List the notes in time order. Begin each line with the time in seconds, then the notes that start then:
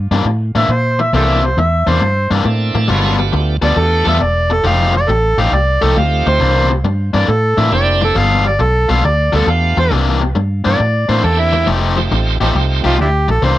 0.11 G2 C3 E3 A#3 D4
0.25 A2, muted overdriven electric guitar stroke
0.55 A2 C3 E3 A#3 D4 E5
0.69 A#2 C5, muted overdriven electric guitar stroke
0.99 E5, muted overdriven electric guitar stroke
1.13 C2 C3 E3 A#3 C4 D4 E4 G4 A4 C5 E5
1.43 C5, muted overdriven electric guitar stroke
1.57 E2 E5, muted overdriven electric guitar stroke
1.87 E2 C3 E3 A#3 D4 C5
2.01 G2, muted overdriven electric guitar stroke
2.31 G2 C3 E3 A#3 D4
2.45 A2 A#3 C4 D4 E4 A4, muted overdriven electric guitar stroke
2.75 A2, muted overdriven electric guitar stroke
2.88 G1 G3 G#3 A#3 B3 C#4 E4 F4 F#4 A4
3.18 A3 B3 D4 F4 G4, muted overdriven electric guitar stroke
3.33 D2, muted overdriven electric guitar stroke
3.61 D2 G3 A3 B3 D4 F4 G4 A4 D5
3.76 E2 A4, muted overdriven electric guitar stroke
4.05 E2 G3 B3 F4 A4 E5
4.20 E1 D5, muted overdriven electric guitar stroke
4.50 A4, muted overdriven electric guitar stroke
4.64 F1 F3 A3 D#4 G4 F5
4.94 D5, muted overdriven electric guitar stroke
5.08 A1 A4, muted overdriven electric guitar stroke
5.37 A1 F3 A3 D#4 G4 F5
5.52 C2 D5, muted overdriven electric guitar stroke
5.82 C2 F3 A3 D#4 G4 A4
5.95 D2 A3 C4 D#4 F4 G4 F5, muted overdriven electric guitar stroke
6.26 D2 C5, muted overdriven electric guitar stroke
6.40 C2 C3 E3 A#3 D4
6.70 muted overdriven electric guitar stroke
6.84 G2, muted overdriven electric guitar stroke
7.14 G2 C3 E3 A#3 D4 D5
7.28 A2 A4, muted overdriven electric guitar stroke
7.58 A2 C3 E3 A#3 D4 E5
7.72 F1 A#3 C4 D4 E4 G4 D5, muted overdriven electric guitar stroke
8.01 A4, muted overdriven electric guitar stroke
8.15 G1 G3 B3 F4 A4 F5
8.45 D5, muted overdriven electric guitar stroke
8.59 B1 A4, muted overdriven electric guitar stroke
8.89 B1 G3 B3 F4 A4 F5
9.04 D2 D5, muted overdriven electric guitar stroke
9.33 D2 G3 B3 F4 A4
9.47 E2 A3 B3 D4 F4 G4 F5, muted overdriven electric guitar stroke
9.77 E2 C5, muted overdriven electric guitar stroke
9.91 C2 C3 E3 A#3 D4
10.21 muted overdriven electric guitar stroke
10.35 G2, muted overdriven electric guitar stroke
10.64 G2 C3 E3 A#3 D4 D5
10.79 A2, muted overdriven electric guitar stroke
11.09 A2 C3 E3 A#3 D4 C5
11.23 E2 A#3 C4 D4 E4 G4 A4, muted overdriven electric guitar stroke
11.39 E4
11.53 muted overdriven electric guitar stroke
11.67 F1 F3 A3 D#4 G4
11.97 A3 C4 D#4 F4 G4, muted overdriven electric guitar stroke
12.11 A1, muted overdriven electric guitar stroke
12.41 A1 F3 A3 C4 D#4 F4 G4
12.55 C2, muted overdriven electric guitar stroke
12.84 C2 F3 A3 D#4 F4 G4
12.98 D2 D4 E4 G4, muted overdriven electric guitar stroke
13.28 A#1 A4, muted overdriven electric guitar stroke
13.42 C2 C3 E3 A#3 D4 C5